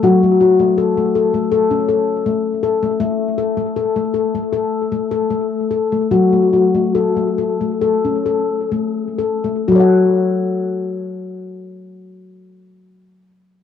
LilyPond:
\new Staff \with { instrumentName = "Handpan" } { \time 4/4 \key fis \minor \tempo 4 = 74 << { fis1 | r1 | fis1 | <fis fis' a' cis'' fis''>1 | } \\ { fis'16 a16 fis'16 a16 a'16 a16 a'16 a16 a'16 cis'16 a'8 a8 a'16 a16 | a8 a'16 a16 a'16 a16 a'16 a16 a'8 a16 a'16 a8 a'16 a16 | fis'16 a16 fis'16 a16 a'16 a16 a'16 a16 a'16 cis'16 a'8 a8 a'16 a16 | r1 | } >> }